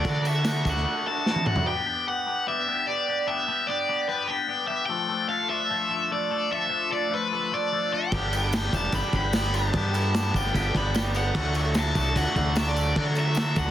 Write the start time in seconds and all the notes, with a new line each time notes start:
0.05 D3 A3 D4 F#4, kick, tambourine, crash
0.10 D5
0.25 A3 D4 F#4 E5, tambourine, crash
0.44 A3 D4 F#4, snare, tambourine, crash
0.65 D2 A3 D4 F#4, kick, tambourine, crash
0.69 F#5
0.76 snare
0.85 A3 D4 F#4
1.06 A3 D4 F#4 A5
1.26 A3 D4 F#4, snare
1.36 high tom
1.46 A3 D4 F#4 F#5, mid tom
1.56 floor tom
1.66 B3 D4 G4 G5
1.85 B3 D4 G4
2.07 B3 D4 G4 F#5
2.26 B3 D4 G4
2.46 B3 D4 G4 E5
2.68 B3 D4 G4
2.87 B3 D4 G4 D5
3.08 B3 D4 G4
3.27 B3 D4 G4 E5
3.48 B3 D4 G4
3.67 B3 D4 G4 D5
3.89 B3 D4 G4
4.09 B3 D4 G4 B4
4.28 B3 D4 G4 G5
4.48 B3 D4 G4
4.67 B3 D4 G4 E5
4.86 F3 A3 D4 A4 G5
5.09 F3 A3 D4 A4
5.29 F3 A3 D4 A4 F5
5.49 F3 A3 D4 A4 E5
5.70 F3 A3 D4 A4
5.90 F3 A3 D4 A4
6.10 F3 A3 D4 A4 D5
6.30 F3 A3 D4 A4
6.50 F3 A3 D4 A4 E5
6.69 F3 A3 D4 A4
6.89 F3 A3 D4 A4 D5
7.10 F3 A3 D4 A4
7.14 B4
7.31 F3 A3 D4 A4
7.52 F3 A3 D4 A4 D5
7.72 F3 A3 D4 A4
7.92 F3 A3 D4 A4 G5
8.12 G1 G3 B3 D4 G4, kick, tambourine, crash
8.32 G3 B3 D4 G4, tambourine, crash
8.53 G3 B3 D4 G4 G5, snare, tambourine, crash
8.72 E1 G3 B3 D4 G4 A5, kick, tambourine, crash
8.84 snare
8.92 G1 G3 B3 D4 G4 B5, kick, tambourine, crash
9.13 G1 G3 B3 D4 G4 B5, kick, tambourine, crash
9.33 G3 B3 D4 G4, snare, tambourine, crash
9.53 G3 B3 D4 G4 A5, tambourine, crash
9.72 G2 G3 B3 D4, kick, tambourine, crash
9.77 D4 G4
9.93 G3 B3 D4 G4, tambourine, crash
10.12 G3 B3 D4 G4, snare, tambourine, crash
10.34 G1 G3 B3 D4 G4 G5, kick, tambourine, crash
10.46 snare
10.54 G1 G3 B3 D4 G4 G5, kick, tambourine, crash
10.75 G1 G3 B3 D4 G4 B5, kick, tambourine, crash
10.95 G3 B3 D4 G4 G5, snare, tambourine, crash
11.15 G3 B3 D4 G4 F#5, tambourine, crash
11.34 D2 F#3 A3 D4 F#4, kick, tambourine, crash
11.55 F#3 A3 D4 F#4, tambourine, crash
11.74 F#3 A3 D4 F#4, snare, tambourine, crash
11.79 A5
11.94 C2 F#3 A3 D4 F#4, kick, tambourine, crash
12.15 D2 F#3 A3 D4 F#4 F#5, kick, tambourine, crash
12.35 D2 F#3 A3 D4 F#4, kick, tambourine, crash
12.54 F#3 A3 D4 F#4 E5, snare, tambourine, crash
12.69 D5
12.76 F#3 A3 D4 F#4, tambourine, crash
12.95 D3 F#3 A3 D4 F#4 D5, kick, crash
13.15 F#3 A3 D4 F#4 E5, tambourine, crash
13.35 F#3 A3 D4 F#4, snare, tambourine, crash
13.56 D2 F#3 A3 D4 F#4 F#5, kick, tambourine, crash
13.67 snare